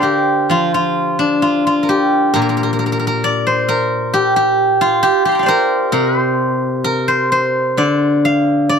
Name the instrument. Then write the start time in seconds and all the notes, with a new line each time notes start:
guzheng
Already playing: D3 C5 D5 F5 G5 A#5 C6
0.02 G4 A#4
0.50 F3 F4
0.74 F4
1.19 D4
1.42 F4
1.67 F4
1.83 A#4
1.89 G4
2.34 A#2 A#4
2.42 A#4
2.49 A#4
2.57 A#4
2.63 A#4
2.73 A#4
2.79 A#4
2.86 A#4
2.92 A#4
3.00 A#4
3.07 A#4
3.24 D5
3.47 C5
3.69 A#4
4.14 G4
4.36 G4
4.81 F4
5.03 G4
5.25 G4 C6
5.32 G5 A#5
5.39 D5 F5
5.46 A#4 C5
5.92 C3 A#4
6.19 C5
6.84 A#4
7.08 C5
7.32 C5
7.77 D3 D5
8.25 F5
8.69 D5